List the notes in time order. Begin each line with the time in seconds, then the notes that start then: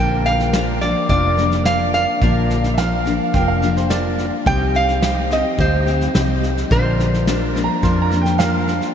Already playing: A#1 A#2 D3 F3 A#3 F4 A#4 D5 G5
0.00 D4 A#4
0.25 F5, snare
0.39 snare
0.53 F3 A#3 D4 F4 A#4 D5, snare, hi-hat pedal
0.81 F3 A#3 D4 A#4 D5, snare
1.09 F1 F3 A#3 D4 F4 A#4 D5, kick, snare
1.37 F3 A#3 D4 A#4, snare
1.52 snare
1.65 F3 A#3 D4 F4 A#4 D5 F5, snare, hi-hat pedal
1.93 F5, snare
2.21 A#1 A#2 D3 F3 A#3 D4 F4 A#4 D5, kick, snare
2.50 snare
2.64 snare
2.74 E5
2.78 F3 A#3 D4 F4 A#4 F5, snare, hi-hat pedal
3.05 F3 A#3 D4 A#4, snare
3.34 F1 F3 A#3 D4 F4 A#4 F5 G5, kick, snare
3.48 F5
3.62 F3 A#3 D4 A#4, snare
3.77 C5, snare
3.89 F3 A#3 D4 F4 A#4 D5, snare, hi-hat pedal
4.18 snare
4.46 C2 C3 G3 C4 D#4 G4 C5 D#5 G5, kick, snare
4.75 F5, snare
4.89 snare
5.02 G3 C4 D#4 G4 C5 D#5, snare, hi-hat pedal
5.30 C4 D#4 G4 D#5, snare
5.58 D2 G3 C4 D#4 G4 C5 D#5, kick, snare
5.86 C4 D#4 G4, snare
6.01 snare
6.14 C2 G3 C4 D#4 G4 C5 D#5, snare, hi-hat pedal
6.43 snare
6.57 snare
6.70 A#1 A#2 D3 F3 A#3 D4 F4 A#4 C5 D5, kick, snare
7.00 snare
7.14 snare
7.27 F3 A#3 D4 F4 A#4 D5, snare, hi-hat pedal
7.55 F3 A#3 D4 A#4, snare
7.64 A#5
7.82 F2 F3 A#3 D4 F4 A#4 D5 C6, kick, snare
8.02 A#5
8.10 F3 A#3 D4 A#4, snare
8.21 G5
8.25 snare
8.38 F3 A#3 D4 F4 A#4 F5, snare, hi-hat pedal
8.68 snare
8.81 snare